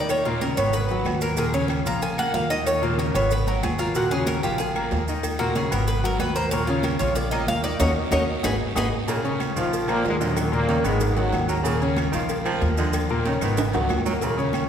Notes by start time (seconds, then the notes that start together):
Already playing: D#2 D#3 D#4 D#5
0.09 C#5, cowbell, high conga, low agogo, long guiro, claves, maracas
0.25 A#2 A#3 F4 A#4, maracas
0.41 C#3 C#4 A#4 C#5, cowbell, high conga, low timbale, low agogo, short guiro, maracas
0.56 G#1 B3 B4 C#5 B5, high conga, low conga, low agogo, short guiro, claves, maracas
0.73 B4, cowbell, high conga, maracas
0.89 F#3 F#4 F#5, cowbell, high conga, maracas
1.04 D#2, cowbell, high conga, low timbale, low agogo, short guiro, claves, maracas
1.21 A#3 A#4 A#5, high conga, short guiro, maracas
1.37 A#2 A#3 G#4 A#4, cowbell, high conga, low agogo, long guiro, maracas
1.53 C#3 C#4 C#5, high conga, maracas
1.68 cowbell, high conga, low timbale, low agogo, short guiro, claves, maracas
1.85 A#1 F3 F4 F5 A#5, high conga, low agogo, short guiro, maracas
2.02 G#5, cowbell, high conga, low agogo, long guiro, maracas
2.18 A#3 A#4 F#5 A#5, high conga, low agogo, claves, maracas
2.34 D#2 F5, cowbell, high conga, low timbale, short guiro, maracas
2.49 D#3 D#4 D#5, high conga, low agogo, short guiro, maracas
2.66 C#5, cowbell, high conga, low agogo, claves, maracas
2.82 A#2 A#3 F4 A#4, maracas
2.97 C#3 C#4 A#4 C#5, cowbell, high conga, low timbale, low agogo, short guiro, maracas
3.15 G#1 B3 B4 C#5 B5, high conga, low conga, low agogo, short guiro, claves, maracas
3.31 B4, cowbell, high conga, low conga, long guiro, maracas
3.47 F#3 F#4 A#4 F#5, cowbell, high conga, maracas
3.63 D#2 G#4, cowbell, high conga, low timbale, low agogo, short guiro, claves, maracas
3.79 A#3 F4 A#4 A#5, high conga, short guiro, maracas
3.95 A#2 A#3 F#4 A#4, cowbell, high conga, low agogo, maracas
4.11 C#3 C#4 G#4 C#5, high conga, maracas
4.26 A#4, cowbell, high conga, low timbale, low agogo, short guiro, claves, maracas
4.43 A#1 F3 F4 G4 F5, high conga, low agogo, short guiro, maracas
4.58 G#4, cowbell, high conga, low agogo, long guiro, maracas
4.75 A#3 A#4 A#5, high conga, low agogo, claves, maracas
4.91 D#2, cowbell, high conga, low timbale, short guiro, maracas
5.07 D#3 D#4 D#5, high conga, low agogo, short guiro, maracas
5.23 cowbell, high conga, low agogo, long guiro, claves, maracas
5.39 A#2 A#3 F#4 A#4, maracas
5.55 C#3 C#4 G#4 C#5, cowbell, high conga, low timbale, low agogo, short guiro, maracas
5.71 G#1 B3 A#4 B4 B5, high conga, low conga, low agogo, short guiro, claves, maracas
5.88 B4, cowbell, high conga, low conga, long guiro, maracas
6.03 F#3 F#4 A#4 F#5, cowbell, high conga, maracas
6.19 D#2 B4, cowbell, high conga, low timbale, low agogo, short guiro, claves, maracas
6.36 A#3 A#4 C5 A#5, high conga, short guiro, maracas
6.51 A#2 A#3 A#4 C#5, cowbell, high conga, low agogo, long guiro, maracas
6.67 C#3 C#4 F4 C#5, high conga, maracas
6.83 A#4, cowbell, high conga, low timbale, low agogo, short guiro, claves, maracas
6.99 A#1 F3 F4 C#5 F5, high conga, low agogo, short guiro, maracas
7.15 D5, cowbell, high conga, low agogo, long guiro, maracas
7.31 A#3 A#4 D#5 A#5, high conga, low agogo, claves, maracas
7.47 D#2 F5, cowbell, high conga, low timbale, short guiro, maracas
7.63 D#3 D#4 D5 D#5, high conga, low agogo, short guiro, maracas
7.79 D#2 C#4 D#4 F#4 A#4 C#5 D#5, cowbell, high conga, high timbale, claves, maracas
8.11 D#2 C#4 D#4 F#4 A#4 C#5 D#5, cowbell, high conga, high timbale, long guiro, claves, maracas
8.43 G#1 D#4 F#4 G#4 B4 D#5, cowbell, high conga, high timbale, long guiro, claves, maracas
8.75 G#1 D#4 F#4 G#4 B4 D#5, cowbell, high conga, high timbale, long guiro, claves, maracas
9.08 A#2 C#3 A#3 A#4, cowbell, high conga, low agogo, long guiro, maracas
9.24 C#3 C#4 C#5, high conga, maracas
9.40 cowbell, high conga, low timbale, low agogo, short guiro, claves, maracas
9.56 A#1 D#3 F3 F4 F5, low agogo, short guiro, maracas
9.72 cowbell, high conga, low agogo, long guiro, maracas
9.88 A#2 F3 A#3 A#4 A#5, high conga, low agogo, claves, maracas
10.04 D#2 G#2 G#3, cowbell, high conga, low timbale, short guiro, maracas
10.20 F#2 A#2 D3 F#3 F4 D#5, high conga, low agogo, short guiro, maracas
10.37 cowbell, high conga, low agogo, long guiro, claves, maracas
10.52 A#2 A#3 A#4, high conga, maracas
10.68 C#3 D#3 C#4 C#5, cowbell, high conga, low timbale, low agogo, short guiro, maracas
10.84 G#1 G#2 D#3 G#3 B3 B4 B5, high conga, low conga, low agogo, short guiro, claves, maracas
11.00 cowbell, high conga, low conga, long guiro, maracas
11.16 F#2 D#3 F#3 F#4 F#5, cowbell, high conga, maracas
11.32 D#2, cowbell, high conga, low timbale, low agogo, short guiro, claves, maracas
11.48 F#3 A#3 A#4 A#5, high conga, short guiro, maracas
11.63 A#2 C#3 A#3 A#4, cowbell, high conga, low agogo, long guiro, maracas
11.81 C#3 C#4 C#5, high conga, maracas
11.97 cowbell, high conga, low timbale, low agogo, short guiro, claves, maracas
12.12 A#1 D#3 F3 F4 F5, high conga, low agogo, short guiro, maracas
12.29 cowbell, high conga, low agogo, long guiro, maracas
12.45 F3 A#3 A#4 A#5, high conga, low agogo, claves, maracas
12.61 D#2, cowbell, high conga, low timbale, short guiro, maracas
12.77 D3 F3 F4 D#5, low agogo, short guiro, maracas
12.93 cowbell, high conga, low agogo, long guiro, claves, maracas
13.09 A#2 A#3 A#4, maracas
13.25 C#3 D#3 C#4 C#5, cowbell, high conga, low timbale, low agogo, short guiro, maracas
13.41 G#1 D#3 B3 B4 B5, high conga, low conga, low agogo, short guiro, claves, maracas
13.57 cowbell, high conga, low conga, high timbale, long guiro, maracas
13.72 C#2 D#3 F#3 F#4 F#5, cowbell, high conga, high timbale, maracas
13.89 D#2, cowbell, high conga, low timbale, low agogo, short guiro, claves, maracas
14.05 F#3 A#3 A#4 A#5, high conga, low timbale, short guiro, maracas
14.21 A#2 C#3 A#3 A#4, cowbell, high conga, low agogo, long guiro, maracas
14.37 C#3 C#4 C#5, high conga, maracas
14.53 cowbell, high conga, low timbale, low agogo, short guiro, claves, maracas